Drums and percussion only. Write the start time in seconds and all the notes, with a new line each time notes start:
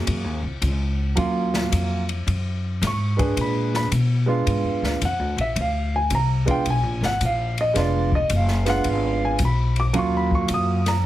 0.07 kick, ride
0.62 kick, hi-hat pedal, ride
1.17 kick, ride
1.54 snare
1.72 kick, hi-hat pedal, ride
2.09 ride
2.27 kick, ride
2.82 kick, snare, hi-hat pedal, ride
3.19 kick, ride
3.37 kick, ride
3.74 snare
3.92 kick, hi-hat pedal, ride
4.47 kick, ride
4.84 snare
5.01 kick, hi-hat pedal, ride
5.38 ride
5.56 kick, ride
6.10 kick, hi-hat pedal, ride
6.48 kick, ride
6.66 kick, ride
7.03 snare
7.21 kick, hi-hat pedal, ride
7.58 ride
7.75 kick, snare, ride
8.12 kick
8.30 kick, hi-hat pedal, ride
8.48 snare
8.66 snare, ride
8.84 kick, ride
9.39 kick, hi-hat pedal, ride
9.76 ride
9.94 kick, ride
10.31 kick
10.48 kick, hi-hat pedal, ride
10.86 snare, ride